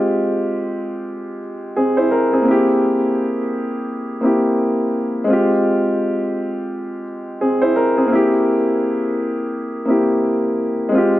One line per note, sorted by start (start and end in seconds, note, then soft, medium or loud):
0.00 2.40 G#3 medium
0.00 1.36 C4 medium
0.00 1.38 F4 medium
0.00 1.39 G4 medium
1.76 1.97 C4 medium
1.76 1.97 G#4 medium
1.97 2.10 E4 medium
1.97 2.10 C5 medium
2.11 2.32 A#4 medium
2.33 2.44 C4 medium
2.33 2.67 G#4 medium
2.42 4.17 A#3 medium
2.42 4.19 C4 medium
2.48 4.20 E4 medium
2.48 4.22 G4 medium
4.21 5.28 A#3 medium
4.21 5.26 C4 medium
4.21 5.29 E4 medium
4.26 5.30 G4 medium
5.24 8.05 G#3 medium
5.24 7.01 C4 medium
5.30 7.02 F4 medium
5.30 7.04 G4 medium
7.41 7.62 C4 medium
7.41 7.62 G#4 medium
7.62 7.75 E4 medium
7.62 7.75 C5 medium
7.76 7.97 A#4 medium
7.97 8.08 C4 medium
7.97 8.31 G#4 medium
8.06 9.82 A#3 medium
8.06 9.83 C4 medium
8.12 9.84 E4 medium
8.12 9.86 G4 medium
9.86 10.92 A#3 medium
9.86 10.90 C4 medium
9.86 10.94 E4 medium
9.90 10.95 G4 medium
10.89 11.20 G#3 medium
10.89 11.20 C4 medium
10.95 11.20 F4 medium
10.95 11.20 G4 medium